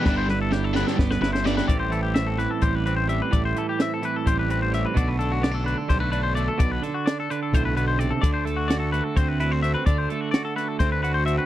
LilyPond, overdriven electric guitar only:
\new Staff \with { instrumentName = "Overdriven electric guitar" } { \time 7/8 \key a \dorian \tempo 4 = 128 <g b d' g'>8 r4 <g b d' g'>8 r4 <g b d' g'>8 | r2. r8 | r2. r8 | r2. r8 |
r2. r8 | r2. r8 | r2. r8 | }